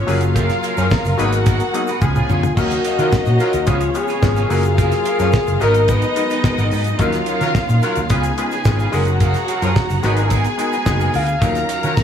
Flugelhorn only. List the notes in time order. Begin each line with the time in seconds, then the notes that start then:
2.31 F4
2.59 F#4
3.70 F4
3.98 G#4
4.81 G#4
5.63 A#4
5.90 B4
11.16 F5